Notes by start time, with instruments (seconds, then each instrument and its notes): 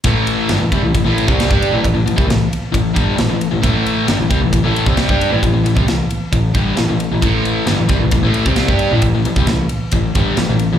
0.04 double bass A1, overdriven electric guitar A2 E3 A3, kick, ride
0.27 ride
0.49 double bass G1, overdriven electric guitar G2 D3, snare, ride
0.60 double bass A1, overdriven electric guitar A2 E3
0.71 double bass C2, overdriven electric guitar C3 G3, kick, ride
0.83 double bass A1, overdriven electric guitar A2 E3
0.94 double bass A1, overdriven electric guitar A2 E3, kick, ride
1.04 double bass A1, overdriven electric guitar A2 E3 A3
1.18 ride
1.27 double bass C2, overdriven electric guitar C3 G3 C4, kick
1.40 snare, ride
1.50 double bass G2, overdriven electric guitar G3 D4 G4, kick
1.62 ride
1.71 double bass A1, overdriven electric guitar A2 E3
1.83 double bass A1, overdriven electric guitar A2 E3, kick, ride
1.94 double bass A1, overdriven electric guitar A2 E3
2.06 double bass A1, overdriven electric guitar A2 E3, ride
2.16 double bass C2, overdriven electric guitar C3 G3, kick
2.28 double bass A1, overdriven electric guitar A2 E3, snare, ride
2.53 ride
2.72 double bass A1, overdriven electric guitar A2 E3, kick, ride
2.94 double bass G1, overdriven electric guitar G2 D3 G3, kick, ride
3.18 double bass A1, overdriven electric guitar A2 E3, snare, ride
3.29 double bass A1, overdriven electric guitar A2 E3
3.41 ride
3.51 double bass A1, overdriven electric guitar A2 E3
3.62 double bass A1, overdriven electric guitar A2 E3 A3, kick, ride
3.86 ride
4.07 double bass G1, overdriven electric guitar G2 D3, snare, ride
4.19 double bass A1, overdriven electric guitar A2 E3
4.30 double bass C2, overdriven electric guitar C3 G3, kick, ride
4.41 double bass A1, overdriven electric guitar A2 E3
4.52 double bass A1, overdriven electric guitar A2 E3, kick, ride
4.63 double bass A1, overdriven electric guitar A2 E3 A3
4.76 ride
4.86 double bass C2, overdriven electric guitar C3 G3 C4, kick
4.97 snare, ride
5.09 double bass G2, overdriven electric guitar G3 D4 G4, kick
5.21 ride
5.31 double bass A1, overdriven electric guitar A2 E3
5.43 double bass A1, overdriven electric guitar A2 E3, kick, ride
5.52 double bass A1, overdriven electric guitar A2 E3
5.64 double bass A1, overdriven electric guitar A2 E3, ride
5.76 double bass C2, overdriven electric guitar C3 G3, kick
5.86 double bass A1, overdriven electric guitar A2 E3, snare, ride
6.10 ride
6.32 double bass A1, overdriven electric guitar A2 E3, kick, ride
6.54 double bass G1, overdriven electric guitar G2 D3 G3, kick, ride
6.77 double bass A1, overdriven electric guitar A2 E3, snare, ride
6.89 double bass A1, overdriven electric guitar A2 E3
7.00 ride
7.11 double bass A1, overdriven electric guitar A2 E3
7.22 double bass A1, overdriven electric guitar A2 E3 A3, kick, ride
7.45 ride
7.65 double bass G1, overdriven electric guitar G2 D3, snare, ride
7.77 double bass A1, overdriven electric guitar A2 E3
7.88 double bass C2, overdriven electric guitar C3 G3, kick, ride
8.00 double bass A1, overdriven electric guitar A2 E3
8.11 double bass A1, overdriven electric guitar A2 E3, kick, ride
8.22 double bass A1, overdriven electric guitar A2 E3 A3
8.34 ride
8.46 double bass C2, overdriven electric guitar C3 G3 C4, kick
8.56 snare, ride
8.68 double bass G2, overdriven electric guitar G3 D4 G4, kick
8.79 ride
8.92 double bass A1, overdriven electric guitar A2 E3
9.02 double bass A1, overdriven electric guitar A2 E3, kick, ride
9.14 double bass A1, overdriven electric guitar A2 E3
9.25 double bass A1, overdriven electric guitar A2 E3, ride
9.36 double bass C2, overdriven electric guitar C3 G3, kick
9.47 double bass A1, overdriven electric guitar A2 E3, snare, ride
9.69 ride
9.92 double bass A1, overdriven electric guitar A2 E3, kick, ride
10.15 double bass G1, overdriven electric guitar G2 D3 G3, kick, ride
10.37 double bass A1, overdriven electric guitar A2 E3, snare, ride
10.49 double bass A1, overdriven electric guitar A2 E3
10.59 ride
10.72 double bass A1, overdriven electric guitar A2 E3